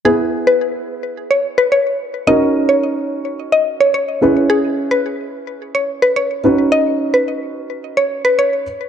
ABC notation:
X:1
M:4/4
L:1/16
Q:1/4=108
K:Elyd
V:1 name="Synth pluck"
G z2 B3 z3 c z B c3 z | d z2 c3 z3 d z c c3 z | G z2 B3 z3 c z B c3 z | d z2 B3 z3 c z B c3 z |]
V:2 name="Grand piano"
[B,EGB]16 | [CDFA]12- [CDFA]2 [CEGB]2- | [CEGB]12- [CEGB]2 [CDFB]2- | [CDFB]12- [CDFB]2 z2 |]